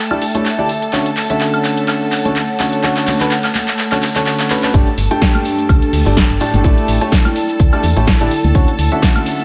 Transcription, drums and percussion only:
0.11 tambourine, high woodblock
0.21 open hi-hat, tambourine, cabasa
0.34 closed hi-hat, tambourine, cabasa
0.45 clap, tambourine, cabasa
0.59 tambourine
0.69 open hi-hat, tambourine, cabasa
0.82 closed hi-hat, tambourine, cabasa
0.92 clap, tambourine, cabasa
1.06 closed hi-hat, tambourine
1.17 clap, open hi-hat, tambourine, cabasa
1.30 closed hi-hat, tambourine, cabasa
1.41 clap, tambourine, cabasa
1.53 closed hi-hat, tambourine, high woodblock
1.64 clap, open hi-hat, tambourine, cabasa
1.77 closed hi-hat, tambourine, cabasa
1.88 clap, tambourine, cabasa, high woodblock
2.01 tambourine
2.12 clap, open hi-hat, tambourine, cabasa
2.25 closed hi-hat, tambourine, high conga, cabasa
2.36 clap, tambourine, cabasa
2.49 tambourine
2.60 clap, open hi-hat, tambourine, cabasa
2.73 closed hi-hat, tambourine, cabasa
2.84 clap, tambourine, cabasa
2.96 clap, closed hi-hat, tambourine
3.07 clap, open hi-hat, tambourine, high conga, cabasa
3.20 clap, closed hi-hat, tambourine, cabasa
3.30 clap, tambourine, cabasa
3.44 clap, closed hi-hat, tambourine, high woodblock
3.54 clap, open hi-hat, tambourine, high conga, cabasa
3.68 clap, closed hi-hat, tambourine, cabasa
3.79 clap, tambourine, cabasa
3.91 clap, closed hi-hat, tambourine, high woodblock
4.03 clap, open hi-hat, tambourine, cabasa
4.15 clap, closed hi-hat, tambourine, cabasa
4.26 clap, tambourine, cabasa
4.39 clap, closed hi-hat, tambourine
4.50 clap, open hi-hat, tambourine, cabasa
4.62 clap, closed hi-hat, tambourine, cabasa
4.73 kick, closed hi-hat, tambourine, cabasa
4.87 closed hi-hat, tambourine
4.98 closed hi-hat, open hi-hat, tambourine, cabasa
5.11 closed hi-hat, tambourine, cabasa
5.21 kick, snare, closed hi-hat, tambourine, cabasa
5.35 closed hi-hat, tambourine, high conga, high woodblock
5.45 snare, closed hi-hat, open hi-hat, tambourine, cabasa
5.58 closed hi-hat, tambourine, cabasa
5.69 kick, closed hi-hat, tambourine, cabasa, high woodblock
5.82 closed hi-hat, tambourine
5.92 open hi-hat, tambourine, high conga, cabasa
6.05 snare, closed hi-hat, tambourine, cabasa
6.17 kick, snare, closed hi-hat, tambourine, cabasa
6.30 closed hi-hat, tambourine
6.40 closed hi-hat, open hi-hat, tambourine, cabasa
6.53 closed hi-hat, tambourine, high conga, cabasa
6.64 kick, closed hi-hat, tambourine, cabasa
6.77 closed hi-hat, tambourine
6.88 closed hi-hat, open hi-hat, tambourine, cabasa
7.00 closed hi-hat, tambourine, cabasa
7.12 kick, snare, closed hi-hat, tambourine, cabasa
7.25 closed hi-hat, tambourine, high conga, high woodblock
7.35 closed hi-hat, open hi-hat, tambourine, cabasa
7.49 closed hi-hat, tambourine, cabasa
7.59 kick, closed hi-hat, tambourine, cabasa
7.72 closed hi-hat, tambourine, high woodblock
7.83 closed hi-hat, open hi-hat, tambourine, high conga, cabasa
7.96 closed hi-hat, tambourine, cabasa
8.07 kick, snare, closed hi-hat, tambourine, cabasa
8.20 closed hi-hat, tambourine
8.31 closed hi-hat, open hi-hat, tambourine, cabasa
8.44 closed hi-hat, tambourine, high conga, cabasa
8.55 kick, closed hi-hat, tambourine, cabasa
8.67 closed hi-hat, tambourine
8.79 closed hi-hat, open hi-hat, tambourine, cabasa
8.92 closed hi-hat, tambourine, cabasa
9.02 kick, snare, closed hi-hat, tambourine, cabasa
9.16 closed hi-hat, tambourine, high conga, high woodblock
9.26 snare, closed hi-hat, open hi-hat, tambourine, cabasa
9.39 closed hi-hat, tambourine, cabasa

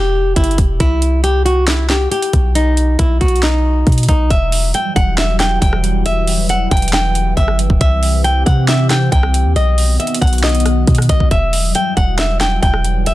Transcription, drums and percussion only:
0.36 kick, closed hi-hat
0.44 closed hi-hat
0.51 closed hi-hat
0.58 kick, closed hi-hat
0.80 kick, closed hi-hat
1.02 closed hi-hat
1.24 closed hi-hat
1.46 closed hi-hat
1.68 snare, clap, closed hi-hat
1.90 snare, clap
2.12 closed hi-hat
2.22 closed hi-hat
2.33 kick, closed hi-hat
2.55 closed hi-hat
2.77 closed hi-hat
2.99 kick, closed hi-hat
3.21 kick, closed hi-hat
3.28 closed hi-hat
3.36 closed hi-hat
3.43 snare, clap, closed hi-hat
3.87 kick, closed hi-hat
3.92 closed hi-hat
3.98 closed hi-hat
4.03 closed hi-hat
4.09 kick, closed hi-hat
4.30 kick, closed hi-hat
4.52 open hi-hat
4.74 closed hi-hat
4.96 kick, closed hi-hat
5.18 snare, clap, closed hi-hat
5.40 snare, clap, closed hi-hat
5.62 kick, closed hi-hat
5.73 cross-stick
5.84 closed hi-hat
6.06 closed hi-hat
6.28 open hi-hat
6.49 closed hi-hat
6.71 kick, closed hi-hat
6.77 closed hi-hat
6.82 closed hi-hat
6.88 closed hi-hat
6.93 snare, clap, closed hi-hat
7.15 closed hi-hat
7.37 kick, closed hi-hat
7.48 cross-stick
7.59 closed hi-hat
7.70 kick
7.81 kick, closed hi-hat
8.03 open hi-hat
8.24 closed hi-hat
8.47 kick, closed hi-hat
8.68 snare, clap, closed hi-hat
8.90 snare, clap, closed hi-hat
9.12 kick, closed hi-hat
9.23 cross-stick
9.34 closed hi-hat
9.56 closed hi-hat
9.78 open hi-hat
10.00 closed hi-hat
10.07 closed hi-hat
10.14 closed hi-hat
10.22 kick, closed hi-hat
10.27 closed hi-hat
10.33 closed hi-hat
10.38 closed hi-hat
10.44 snare, clap, closed hi-hat
10.49 closed hi-hat
10.55 closed hi-hat
10.60 closed hi-hat
10.66 cross-stick, closed hi-hat
10.87 kick, closed hi-hat
10.95 cross-stick, closed hi-hat
11.02 closed hi-hat
11.09 kick, closed hi-hat
11.20 kick
11.31 kick, closed hi-hat
11.53 open hi-hat
11.75 closed hi-hat
11.97 kick, closed hi-hat
12.19 snare, clap, closed hi-hat
12.41 snare, clap, closed hi-hat
12.63 kick, closed hi-hat
12.74 cross-stick
12.85 closed hi-hat
13.06 closed hi-hat

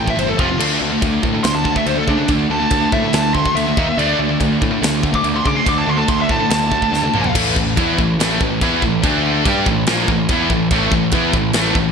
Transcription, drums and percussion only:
0.08 kick
0.19 china
0.39 kick
0.60 crash, china
1.02 kick, china
1.23 kick
1.44 snare, china
1.65 kick
1.76 kick
1.86 china
2.08 kick
2.28 kick, china
2.70 kick, china
2.92 kick
3.13 snare, china
3.35 kick
3.46 kick
3.57 china
3.77 kick
3.99 china
4.41 kick, china
4.62 kick
4.83 snare, china
5.03 kick
5.14 kick
5.24 china
5.46 kick
5.66 kick, china
6.08 kick, china
6.29 kick
6.50 snare, china
6.72 kick
6.82 kick
6.94 snare
7.03 high tom
7.14 mid tom
7.24 floor tom
7.35 kick, crash, china
7.56 kick
7.77 kick, china
7.99 kick
8.20 snare, china
8.41 kick
8.61 kick, china
8.82 kick
9.03 kick, china
9.45 kick, china
9.66 kick
9.87 snare, china
10.08 kick
10.29 kick, china
10.50 kick
10.71 kick, china
10.92 kick
11.12 kick, china
11.33 kick
11.53 snare, china
11.75 kick

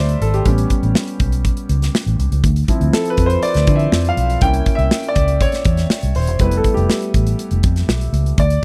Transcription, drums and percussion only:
0.09 closed hi-hat
0.22 closed hi-hat
0.34 closed hi-hat
0.45 kick, closed hi-hat
0.58 closed hi-hat
0.70 kick, closed hi-hat
0.83 closed hi-hat
0.95 snare
1.08 closed hi-hat
1.20 kick, closed hi-hat
1.32 closed hi-hat
1.45 kick, closed hi-hat
1.57 closed hi-hat
1.69 closed hi-hat
1.82 snare, closed hi-hat
1.95 snare
2.07 closed hi-hat
2.20 closed hi-hat
2.32 closed hi-hat
2.44 kick, closed hi-hat
2.56 closed hi-hat
2.68 kick, closed hi-hat
2.81 closed hi-hat
2.93 snare
3.05 closed hi-hat
3.17 kick, closed hi-hat
3.30 closed hi-hat
3.42 closed hi-hat
3.54 snare, closed hi-hat
3.67 kick, closed hi-hat
3.79 closed hi-hat
3.92 snare
4.05 closed hi-hat
4.17 closed hi-hat
4.30 closed hi-hat
4.41 kick, closed hi-hat
4.54 closed hi-hat
4.66 kick, closed hi-hat
4.79 closed hi-hat
4.91 snare
5.03 closed hi-hat
5.16 kick, closed hi-hat
5.28 closed hi-hat
5.41 kick, closed hi-hat
5.52 snare, closed hi-hat
5.65 kick, closed hi-hat
5.77 snare, closed hi-hat
5.90 snare
6.03 closed hi-hat
6.15 open hi-hat
6.27 closed hi-hat
6.39 kick, closed hi-hat
6.51 closed hi-hat
6.64 kick, closed hi-hat
6.77 closed hi-hat
6.90 snare
7.02 closed hi-hat
7.14 kick, closed hi-hat
7.27 closed hi-hat
7.39 closed hi-hat
7.51 closed hi-hat
7.63 kick, closed hi-hat
7.76 snare, closed hi-hat
7.89 snare
8.01 closed hi-hat
8.14 closed hi-hat
8.26 closed hi-hat
8.38 kick, closed hi-hat
8.50 closed hi-hat

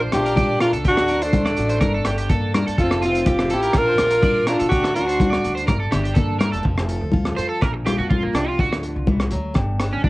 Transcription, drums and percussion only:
0.12 cross-stick, closed hi-hat, high conga
0.26 closed hi-hat
0.36 kick, closed hi-hat, high conga
0.60 cross-stick, closed hi-hat, muted conga
0.73 closed hi-hat
0.84 kick, closed hi-hat, muted conga
0.97 cross-stick
1.08 closed hi-hat, muted conga
1.22 closed hi-hat
1.33 kick, closed hi-hat, high conga
1.46 cross-stick
1.57 closed hi-hat
1.69 closed hi-hat
1.81 kick, cross-stick, closed hi-hat, muted conga, high conga
2.05 cross-stick, closed hi-hat
2.18 closed hi-hat
2.29 kick, closed hi-hat
2.54 cross-stick, closed hi-hat, muted conga, high conga
2.68 closed hi-hat
2.78 kick, closed hi-hat, muted conga
2.91 cross-stick
3.02 closed hi-hat
3.15 closed hi-hat
3.26 kick, closed hi-hat, high conga
3.39 cross-stick
3.50 closed hi-hat
3.63 closed hi-hat
3.73 kick, cross-stick, closed hi-hat, muted conga
3.98 cross-stick, closed hi-hat, high conga
4.10 closed hi-hat
4.22 kick, closed hi-hat, high conga
4.47 cross-stick, closed hi-hat, muted conga
4.60 closed hi-hat
4.72 kick, closed hi-hat, muted conga
4.84 cross-stick
4.96 closed hi-hat, muted conga
5.09 closed hi-hat
5.20 kick, closed hi-hat, high conga
5.33 cross-stick
5.44 closed hi-hat
5.57 closed hi-hat
5.68 kick, cross-stick, closed hi-hat, muted conga, high conga
5.92 cross-stick, closed hi-hat, low conga
6.05 closed hi-hat
6.16 kick, closed hi-hat, low conga
6.40 cross-stick, closed hi-hat, high conga
6.53 closed hi-hat
6.64 kick, muted conga
6.78 cross-stick
6.89 closed hi-hat
7.12 kick, high conga
7.25 cross-stick
7.38 closed hi-hat
7.62 kick, cross-stick, muted conga
7.87 cross-stick, closed hi-hat, high conga
8.11 kick, high conga
8.35 cross-stick, closed hi-hat, muted conga
8.59 kick, muted conga
8.73 cross-stick
8.83 closed hi-hat
9.07 kick, high conga, low conga
9.20 cross-stick
9.31 closed hi-hat
9.55 kick, cross-stick, muted conga
9.80 cross-stick, closed hi-hat, muted conga
10.04 kick, high conga

